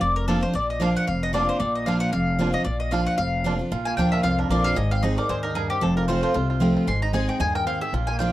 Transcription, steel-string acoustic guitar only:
0.01 0.52 F2 medium
0.28 0.42 F3 medium
0.28 0.42 A#3 medium
0.28 0.42 D4 medium
0.28 0.40 F4 medium
0.41 0.54 D4 medium
0.41 0.53 F4 medium
0.53 1.05 A#2 medium
0.80 1.06 F3 medium
0.80 1.06 A#3 medium
0.80 1.06 D4 medium
0.80 1.07 F4 medium
1.07 1.58 F2 medium
1.33 1.59 F3 medium
1.33 1.59 A#3 medium
1.33 1.59 D4 medium
1.33 1.60 F4 medium
1.60 2.11 A#2 medium
1.86 2.12 F3 medium
1.86 2.12 A#3 medium
1.86 2.12 D4 medium
1.86 2.13 F4 loud
2.13 2.63 F2 medium
2.39 2.53 F3 medium
2.39 2.53 A#3 loud
2.39 2.53 D4 loud
2.39 2.51 F4 medium
2.53 2.66 D4 soft
2.53 2.65 F4 medium
2.65 3.16 A#2 medium
2.91 3.17 F3 medium
2.91 3.17 A#3 medium
2.91 3.17 D4 medium
2.91 3.18 F4 medium
3.18 3.69 F2 loud
3.44 3.59 F3 medium
3.44 3.59 A#3 medium
3.44 3.59 D4 medium
3.44 3.58 F4 medium
3.59 3.72 D4 soft
3.59 3.71 F4 medium
3.72 4.22 A#2 loud
3.98 4.23 F3 medium
3.98 4.23 A#3 medium
3.98 4.24 D4 medium
3.98 4.24 F4 medium
4.24 4.74 F2 medium
4.51 4.76 F3 medium
4.51 4.76 A#3 medium
4.51 4.76 D4 medium
4.51 4.77 F4 medium
4.76 5.27 G#2 medium
5.03 5.17 G#3 medium
5.03 5.17 C4 medium
5.03 5.18 D#4 medium
5.03 5.16 G#4 loud
5.17 5.30 D#4 soft
5.17 5.29 G#4 medium
5.29 5.55 G#2 loud
5.55 5.81 G2 medium
5.81 6.32 F2 medium
6.08 6.33 F3 medium
6.08 6.34 A3 loud
6.08 6.34 C4 loud
6.08 6.34 F4 loud
6.34 6.85 C3 medium
6.60 6.86 F3 medium
6.60 6.86 A3 medium
6.60 6.87 C4 medium
6.60 6.87 F4 medium
6.87 7.38 G#2 medium
7.13 7.39 G#3 medium
7.13 7.39 C4 medium
7.13 7.39 D#4 medium
7.13 7.40 G#4 loud
7.40 7.65 G2 medium
7.67 7.92 G#2 medium
7.94 8.32 A#2 medium
8.20 8.32 F3 medium
8.20 8.32 A#3 medium
8.20 8.32 D4 loud
8.20 8.32 F4 medium

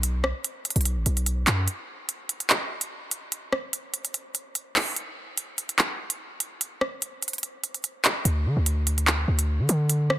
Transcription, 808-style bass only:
0.00 0.33 B1 loud
0.76 0.98 B1 loud
0.96 1.06 A1 loud
1.06 1.46 B1 loud
1.47 1.68 F#2 loud
8.25 8.47 D2 loud
8.46 8.56 D3 loud
8.57 9.25 D2 loud
9.28 9.61 D2 loud
9.59 9.69 D3 loud
9.69 10.19 D3 loud

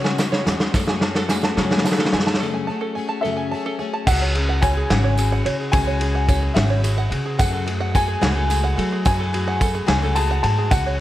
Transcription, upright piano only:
3.21 3.74 E5 loud
4.07 4.58 F#5 loud
4.62 5.69 G#5 loud
5.72 6.52 G#5 loud
6.54 7.07 E5 medium
7.39 7.91 F#5 medium
7.95 9.04 G#5 loud
9.06 9.86 G#5 loud
9.88 10.17 G#5 medium
10.15 10.41 A5 loud
10.43 10.72 A5 medium
10.71 11.00 F#5 loud

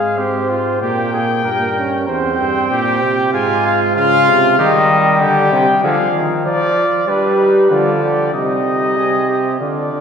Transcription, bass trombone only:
0.00 0.79 G#2 medium
0.82 1.44 A#2 medium
1.45 2.07 G2 medium
2.08 2.41 E2 medium
2.39 2.70 G2 medium
2.71 3.04 A#2 medium
3.02 3.33 C3 medium
3.33 3.95 G#2 medium
3.96 4.29 C#3 medium
4.28 4.59 C3 medium
4.59 5.20 D#3 loud
5.21 5.51 D3 loud
5.52 5.66 C3 loud
5.83 5.97 D3 loud
6.15 6.45 D#3 medium
6.46 6.86 F3 loud
7.08 7.67 G3 loud
7.71 8.32 D3 loud
8.33 8.96 C3 medium
8.97 9.59 C3 medium
9.60 9.90 D3 medium
9.92 10.01 D3 medium

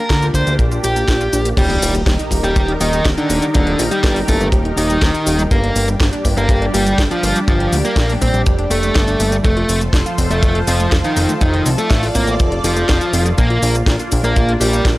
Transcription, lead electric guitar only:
0.00 0.25 A#4 medium
0.35 0.53 C5 medium
0.84 1.48 G4 medium
1.58 1.93 G3 medium
1.58 1.93 G4 medium
2.44 2.71 G3 medium
2.44 2.71 G4 medium
2.80 3.07 D#3 medium
2.80 3.07 D#4 medium
3.18 3.44 D3 medium
3.18 3.44 D4 medium
3.54 3.81 D3 medium
3.54 3.81 D4 medium
3.91 4.18 G3 medium
3.91 4.18 G4 medium
4.28 4.46 A3 medium
4.28 4.46 A4 medium
4.77 5.41 D#3 medium
4.77 5.41 D#4 medium
5.51 5.87 A#3 medium
5.51 5.87 A#4 medium
6.37 6.64 A#3 medium
6.37 6.64 A#4 medium
6.74 7.01 G3 medium
6.74 7.01 G4 medium
7.11 7.38 F3 medium
7.11 7.38 F4 medium
7.48 7.75 F3 medium
7.48 7.75 F4 medium
7.85 8.11 A#3 medium
7.85 8.12 A#4 medium
8.22 8.39 C4 medium
8.22 8.39 C5 medium
8.71 9.35 A3 medium
8.71 9.35 A4 medium
9.44 9.80 A3 medium
9.44 9.80 A4 medium
10.31 10.57 A3 medium
10.31 10.57 A4 medium
10.68 10.94 F3 medium
10.68 10.94 F4 medium
11.04 11.31 D#3 medium
11.04 11.31 D#4 medium
11.41 11.68 D#3 medium
11.41 11.68 D#4 medium
11.78 12.05 A3 medium
11.78 12.05 A4 medium
12.15 12.33 A#3 medium
12.15 12.33 A#4 medium
12.64 13.28 F3 medium
12.64 13.28 F4 medium
13.38 13.74 A#3 medium
13.38 13.74 A#4 loud
14.24 14.51 A#3 medium
14.24 14.51 A#4 medium
14.61 14.88 G3 medium
14.61 14.88 G4 loud

